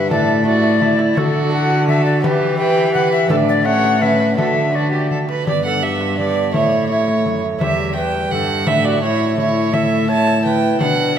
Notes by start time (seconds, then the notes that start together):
Already playing: G2 G4 E5
0.07 A2 D4 E4 A4 D5, frame drum
0.12 A2
0.42 D4 E4 F#4 A4 D5
0.47 E4
0.64 frame drum
0.78 C#3 E4 A4, frame drum
0.99 frame drum
1.14 D3 D4 F#4 A4, frame drum
1.18 D3 A4
1.50 D4 F#4 A4
1.54 F#5
1.70 frame drum
1.88 A4 E5, frame drum
2.05 D5, frame drum
2.20 E3 B3 E4 G4 B4, frame drum
2.25 G4
2.56 B3 E4 G4 B4 G5
2.78 frame drum
2.94 B4 F#5, frame drum
3.11 E5, frame drum
3.26 A2 D4 E4 A4, frame drum
3.30 D4 D5
3.49 D5
3.62 C#4 E4 A4 C#5 F#5
3.84 frame drum
3.98 C#4 E4 A4 B4
4.02 C#4 E5, frame drum
4.20 frame drum
4.34 D3 D4 F#4 A4 E5
4.38 D3, frame drum
4.71 D4 F#4 A4
4.75 D5
4.92 G4, frame drum
5.11 A4, frame drum
5.29 B4, frame drum
5.43 G2 B3 D4 G4, frame drum
5.48 B3 D5
5.65 A4 F#5
5.83 G4 E5
6.01 frame drum
6.15 B3 D4 G4 D5, frame drum
6.19 B3
6.50 A2 A3 E4, frame drum
6.55 A3 C#5
6.86 A3 E4 C#5
6.91 A3
7.08 frame drum
7.25 F#2, frame drum
7.58 E2 G3 B3 E4 G4 E5, frame drum
7.94 G3 B3 E4 B4 G5
8.15 frame drum
8.31 G2 A4 F#5, frame drum
8.64 A2 A3 D4 E4 A4 E5, frame drum
8.84 F#4 D5
9.00 A2 A3 E4 C#5
9.21 frame drum
9.35 A3 E4 C#5, frame drum
9.71 A3 E4 A4 E5, frame drum
10.05 A3 E4 C#5
10.10 A5
10.27 frame drum
10.45 B4 G5, frame drum
10.78 B2 B3 D4 B4 F#5, frame drum
11.16 G4